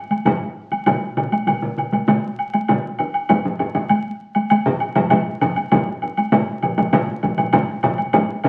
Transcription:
0.11 taiko high medium
0.11 high woodblock soft
0.25 taiko low-mid loud
0.25 taiko high medium
0.25 high woodblock medium
0.72 taiko high medium
0.72 high woodblock soft
0.86 taiko medium
0.86 taiko mid loud
0.86 taiko high medium
0.86 high woodblock medium
1.17 taiko medium
1.17 taiko mid medium
1.17 high woodblock soft
1.32 taiko high medium
1.32 high woodblock soft
1.47 taiko mid medium
1.47 taiko high medium
1.47 high woodblock soft
1.62 taiko mid medium
1.78 taiko mid medium
1.78 high woodblock soft
1.92 taiko mid medium
1.92 taiko high medium
1.92 high woodblock soft
2.08 taiko mid loud
2.08 taiko high medium
2.08 high woodblock soft
2.39 high woodblock soft
2.54 taiko high medium
2.54 high woodblock soft
2.68 taiko mid loud
2.68 taiko high medium
2.68 high woodblock soft
2.99 taiko medium
2.99 high woodblock soft
3.14 high woodblock soft
3.29 taiko medium
3.29 taiko low-mid medium
3.29 taiko high medium
3.29 high woodblock soft
3.45 taiko low-mid medium
3.59 taiko low-mid medium
3.59 high woodblock soft
3.75 taiko low-mid medium
3.75 taiko high medium
3.75 high woodblock soft
3.89 taiko high medium
3.89 high woodblock soft
4.35 taiko high medium
4.35 high woodblock soft
4.50 taiko high medium
4.50 high woodblock medium
4.66 taiko low-mid loud
4.80 high woodblock soft
4.95 taiko low-mid loud
4.95 taiko high medium
4.95 high woodblock soft
5.10 taiko low-mid medium
5.10 taiko high medium
5.10 high woodblock medium
5.41 taiko low-mid loud
5.41 high woodblock soft
5.56 taiko high soft
5.56 high woodblock soft
5.72 taiko loud
5.72 taiko low-mid medium
5.72 taiko mid loud
5.72 taiko high medium
5.72 high woodblock medium
6.02 taiko medium
6.02 high woodblock soft
6.17 taiko high medium
6.17 high woodblock soft
6.32 taiko low-mid medium
6.32 taiko mid loud
6.32 taiko high medium
6.32 high woodblock medium
6.63 taiko low-mid medium
6.63 taiko mid medium
6.63 high woodblock soft
6.78 taiko low-mid medium
6.78 taiko mid medium
6.78 taiko high medium
6.78 high woodblock soft
6.93 taiko low-mid loud
6.93 taiko mid loud
6.93 taiko high medium
6.93 high woodblock medium
7.23 taiko low-mid medium
7.23 taiko mid medium
7.23 taiko high soft
7.23 high woodblock soft
7.38 taiko low-mid medium
7.38 taiko mid medium
7.38 taiko high medium
7.38 high woodblock soft
7.53 taiko low-mid loud
7.53 taiko mid loud
7.53 taiko high medium
7.53 high woodblock medium
7.83 taiko low-mid medium
7.83 taiko mid loud
7.83 high woodblock soft
7.98 taiko high soft
7.98 high woodblock soft
8.13 taiko loud
8.13 taiko low-mid loud
8.13 taiko high medium
8.13 high woodblock medium
8.44 taiko low-mid medium
8.44 high woodblock soft

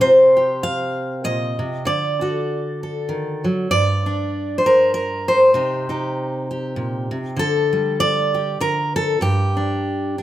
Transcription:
0.01 1.58 C3 medium
0.01 1.24 C5 loud
0.37 1.83 G4 soft
0.63 1.24 F5 medium
1.24 1.59 A#2 medium
1.24 1.86 D#5 loud
1.59 1.86 C3 medium
1.85 3.66 D3 medium
1.85 3.70 D5 medium
2.21 3.67 F#4 soft
2.21 2.82 A4 soft
2.83 3.67 A4 soft
3.09 3.43 D#3 medium
3.44 3.70 F#3 medium
3.71 5.54 G2 medium
3.71 4.58 D5 loud
4.06 4.66 D4 soft
4.58 5.27 C5 medium
4.66 4.93 A#4 medium
4.94 5.54 A#4 medium
5.28 7.11 C5 medium
5.54 7.10 C3 medium
5.54 5.88 D#4 soft
5.54 5.90 G4 soft
5.89 7.35 D#4 soft
5.89 6.50 G4 soft
6.51 7.35 G4 soft
6.76 7.11 A#2 medium
7.11 7.37 C3 medium
7.36 8.56 D3 medium
7.36 8.34 A4 loud
7.73 8.57 G3 soft
8.00 8.60 D5 loud
8.34 8.57 G4 soft
8.60 9.18 D3 medium
8.60 8.95 A#4 medium
8.96 9.22 A4 medium
9.21 10.22 G2 medium
9.21 10.22 G4 medium
9.57 10.17 D4 soft
10.18 10.22 D4 soft

